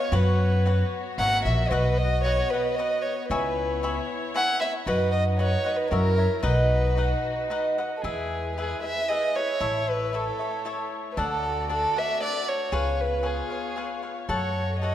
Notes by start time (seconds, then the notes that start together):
Already playing: B3 F4 B4 C#5 F5
0.12 F#2 F#4 B4 C#5 F#5
0.66 F#4 B4 C#5 F#5
1.18 G#1 A#3 E4 A#4 C#5 E5 F#5
1.45 A#1 E5
1.70 B1 B3 F#4 B4 D#5 F#5
1.98 D#5
2.24 F#4 B4 C#5 D#5 F#5
2.50 B4 D#5 F#5
2.55 B4
2.75 F#4 D#5
2.79 B4 D#5 F#5
3.02 C#5
3.28 C#2 E4 B4 C#5 E5 G#5 B5
3.83 C#5 E5 G#5 B5
4.34 C#5 E5 F#5 G#5 B5
4.61 E5 G#5 B5
4.86 F#2 D#4 F#4 B4 D#5 F#5
5.12 D#5
5.38 F#4 B4 C#5 D#5 F#5
5.64 B4 D#5 F#5
5.76 B4
5.90 F#2 E4 F#4 A#4 C#5 E5
6.18 A#4 C#5 E5
6.43 B1 D#4 F#4 B4 D#5 F#5
6.97 D#4 B4 D#5 F#5
7.50 D#4 B4 D#5 F#5
7.78 B4 D#5 F#5
7.97 A4
8.02 E2 G#3 E4 G#4 B4 E5
8.56 E4 G#4 B4 E5
8.83 G#4 B4 E5
9.08 E4 G#4 B4 D#5 E5
9.36 G#4 B4 C#5 E5
9.60 A1 A3 E4 A4 C#5 E5
9.90 B4
10.13 E4 A4 C#5 E5
10.39 A4 C#5 E5
10.65 E4 A4 C#5 E5
11.12 B4
11.16 D2 A3 D4 F#4 A4 D5 F#5
11.69 D4 A4 D5 F#5
11.96 A4 D5 E5 F#5
12.21 D4 A4 D5 F#5
12.49 C#5
12.72 C#2 B3 F4 G#4 B4 C#5 F5
13.01 B4
13.23 G#4 B4 C#5 F5
13.50 B4 C#5 F5
13.76 G#4 B4 C#5 F5
14.02 B4 C#5 F5
14.29 F#2 A3 F#4 A4 C#5 F#5 A5
14.79 A4 C#5 D#5 F#5
14.84 A5